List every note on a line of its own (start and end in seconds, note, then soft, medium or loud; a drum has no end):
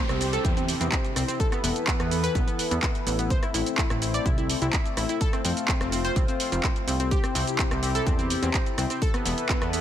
0.00 1.38 C3 medium
0.00 1.38 C4 medium
0.00 5.17 E4 medium
0.00 1.38 G4 medium
0.00 downlifter medium
0.09 0.38 C2 loud
0.09 0.16 C4 medium
0.09 cross-stick medium
0.09 closed hi-hat soft
0.09 shaker soft
0.21 0.28 C4 medium
0.21 open hi-hat loud
0.21 shaker medium
0.33 0.40 A4 medium
0.33 closed hi-hat medium
0.33 shaker soft
0.45 0.74 E2 medium
0.45 0.52 C4 medium
0.45 kick loud
0.45 closed hi-hat medium
0.45 shaker soft
0.57 0.64 C4 medium
0.57 closed hi-hat soft
0.57 shaker soft
0.68 open hi-hat loud
0.68 shaker medium
0.81 0.88 E2 loud
0.81 0.88 C4 medium
0.81 closed hi-hat medium
0.81 shaker soft
0.92 1.00 C4 medium
0.92 kick loud
0.92 clap loud
0.92 closed hi-hat medium
0.92 shaker soft
1.05 closed hi-hat soft
1.05 shaker soft
1.16 1.24 C2 medium
1.16 1.24 C4 medium
1.16 cross-stick medium
1.16 open hi-hat loud
1.16 shaker medium
1.28 1.35 C4 medium
1.28 closed hi-hat medium
1.28 shaker soft
1.40 3.28 E3 medium
1.40 3.28 A4 medium
1.40 1.47 A4 medium
1.40 3.28 B4 medium
1.40 kick loud
1.40 closed hi-hat medium
1.40 shaker soft
1.52 1.59 B3 medium
1.52 cross-stick medium
1.52 closed hi-hat soft
1.52 shaker soft
1.64 1.72 E1 medium
1.64 1.71 B3 medium
1.64 open hi-hat loud
1.64 shaker medium
1.76 closed hi-hat medium
1.76 shaker soft
1.87 1.95 B3 medium
1.87 kick loud
1.87 clap loud
1.87 closed hi-hat medium
1.87 shaker soft
2.00 2.29 E2 medium
2.00 2.07 B3 medium
2.00 cross-stick medium
2.00 closed hi-hat soft
2.00 shaker soft
2.11 2.19 B3 medium
2.11 open hi-hat loud
2.11 shaker medium
2.24 2.31 B4 loud
2.24 closed hi-hat medium
2.24 shaker soft
2.35 2.43 B1 loud
2.35 2.43 B3 medium
2.35 kick loud
2.35 closed hi-hat medium
2.35 shaker soft
2.47 2.54 B3 medium
2.47 closed hi-hat soft
2.47 shaker soft
2.59 open hi-hat loud
2.59 shaker medium
2.71 2.79 E2 loud
2.71 2.78 B3 medium
2.71 closed hi-hat medium
2.71 shaker soft
2.83 2.90 B3 medium
2.83 kick loud
2.83 clap loud
2.83 closed hi-hat medium
2.83 shaker soft
2.95 closed hi-hat soft
2.95 shaker soft
3.07 3.36 A1 medium
3.07 3.14 B3 medium
3.07 open hi-hat loud
3.07 shaker medium
3.19 3.26 B3 medium
3.19 closed hi-hat medium
3.19 shaker soft
3.30 7.07 A3 medium
3.30 5.19 C4 medium
3.30 3.38 C5 loud
3.30 kick loud
3.30 closed hi-hat soft
3.30 shaker soft
3.43 3.50 E4 medium
3.43 cross-stick medium
3.43 closed hi-hat soft
3.43 shaker soft
3.54 3.62 A1 loud
3.54 3.62 E4 medium
3.54 open hi-hat loud
3.54 shaker medium
3.66 closed hi-hat medium
3.66 shaker soft
3.78 3.85 E4 medium
3.78 kick loud
3.78 clap loud
3.78 closed hi-hat medium
3.78 shaker soft
3.90 4.19 A1 loud
3.90 3.97 E4 medium
3.90 cross-stick medium
3.90 closed hi-hat soft
3.90 shaker soft
4.02 4.09 E4 medium
4.02 open hi-hat loud
4.02 shaker medium
4.14 4.21 D5 medium
4.14 closed hi-hat medium
4.14 shaker soft
4.26 4.55 C2 medium
4.26 4.33 E4 medium
4.26 kick loud
4.26 closed hi-hat medium
4.26 shaker soft
4.38 4.45 E4 medium
4.38 closed hi-hat soft
4.38 shaker soft
4.50 open hi-hat loud
4.50 shaker medium
4.62 4.69 C2 loud
4.62 4.69 E4 medium
4.62 closed hi-hat medium
4.62 shaker soft
4.73 4.81 E4 medium
4.73 kick loud
4.73 clap loud
4.73 closed hi-hat medium
4.73 shaker soft
4.86 closed hi-hat soft
4.86 shaker soft
4.97 5.05 A1 medium
4.97 5.05 E4 medium
4.97 cross-stick medium
4.97 open hi-hat loud
4.97 shaker medium
5.09 5.16 E4 medium
5.09 closed hi-hat medium
5.09 shaker soft
5.21 8.98 C4 medium
5.21 7.09 F4 medium
5.21 5.28 A4 loud
5.21 kick loud
5.21 closed hi-hat soft
5.21 shaker soft
5.33 5.40 C4 medium
5.33 cross-stick medium
5.33 closed hi-hat soft
5.33 shaker soft
5.45 5.53 F2 medium
5.45 5.52 C4 medium
5.45 open hi-hat loud
5.45 shaker medium
5.57 closed hi-hat soft
5.57 shaker soft
5.68 5.76 C4 medium
5.68 kick loud
5.68 clap loud
5.68 closed hi-hat medium
5.68 shaker soft
5.81 6.10 F1 medium
5.81 5.88 C4 medium
5.81 cross-stick medium
5.81 closed hi-hat soft
5.81 shaker soft
5.92 6.00 C4 medium
5.92 open hi-hat loud
5.92 shaker medium
6.05 6.12 C5 medium
6.05 closed hi-hat soft
6.05 shaker soft
6.16 6.24 C2 loud
6.16 6.24 C4 medium
6.16 kick loud
6.16 closed hi-hat medium
6.16 shaker soft
6.28 6.35 C4 medium
6.28 closed hi-hat soft
6.28 shaker soft
6.40 open hi-hat loud
6.40 shaker medium
6.52 6.60 F1 loud
6.52 6.59 C4 medium
6.52 closed hi-hat medium
6.52 shaker soft
6.63 6.71 C4 medium
6.63 kick loud
6.63 clap loud
6.63 closed hi-hat medium
6.63 shaker soft
6.76 closed hi-hat soft
6.76 shaker soft
6.87 7.17 C2 loud
6.87 6.95 C4 medium
6.87 open hi-hat loud
6.87 shaker medium
7.00 7.07 C4 medium
7.00 closed hi-hat soft
7.00 shaker soft
7.11 9.00 C3 medium
7.11 9.00 E4 medium
7.11 9.00 G4 medium
7.11 7.19 G4 loud
7.11 kick loud
7.11 closed hi-hat medium
7.11 shaker soft
7.24 7.31 C4 medium
7.24 cross-stick medium
7.24 closed hi-hat soft
7.24 shaker soft
7.35 7.43 C2 loud
7.35 7.43 C4 medium
7.35 open hi-hat loud
7.35 shaker medium
7.47 closed hi-hat soft
7.47 shaker soft
7.59 7.66 C4 medium
7.59 kick loud
7.59 clap loud
7.59 closed hi-hat medium
7.59 shaker soft
7.71 8.00 C2 loud
7.71 7.78 C4 medium
7.71 cross-stick medium
7.71 closed hi-hat soft
7.71 shaker soft
7.83 7.90 C4 medium
7.83 open hi-hat loud
7.83 shaker medium
7.95 8.02 A4 medium
7.95 closed hi-hat soft
7.95 shaker soft
8.07 8.36 E2 medium
8.07 8.14 C4 medium
8.07 kick loud
8.07 closed hi-hat soft
8.07 shaker soft
8.19 8.26 C4 medium
8.19 closed hi-hat soft
8.19 shaker soft
8.30 open hi-hat loud
8.30 shaker medium
8.43 8.50 E2 loud
8.43 8.50 C4 medium
8.43 closed hi-hat soft
8.43 shaker soft
8.54 8.62 C4 medium
8.54 kick loud
8.54 clap loud
8.54 closed hi-hat medium
8.54 shaker soft
8.66 closed hi-hat soft
8.66 shaker soft
8.78 8.86 C2 medium
8.78 8.85 C4 medium
8.78 cross-stick medium
8.78 open hi-hat loud
8.78 shaker medium
8.90 8.97 C4 medium
8.90 closed hi-hat soft
8.90 shaker soft
9.02 9.81 E3 medium
9.02 9.81 E4 medium
9.02 9.81 A4 medium
9.02 9.09 A4 loud
9.02 9.81 B4 medium
9.02 kick loud
9.02 closed hi-hat soft
9.02 shaker soft
9.14 9.21 B3 medium
9.14 cross-stick medium
9.14 closed hi-hat soft
9.14 shaker soft
9.26 9.34 E1 medium
9.26 9.33 B3 medium
9.26 open hi-hat loud
9.26 shaker medium
9.38 closed hi-hat medium
9.38 shaker soft
9.49 9.57 B3 medium
9.49 kick loud
9.49 clap loud
9.49 closed hi-hat medium
9.49 shaker soft
9.62 9.81 E2 medium
9.62 9.69 B3 medium
9.62 cross-stick medium
9.62 closed hi-hat soft
9.62 shaker soft
9.73 9.81 B3 medium
9.73 open hi-hat loud
9.73 shaker medium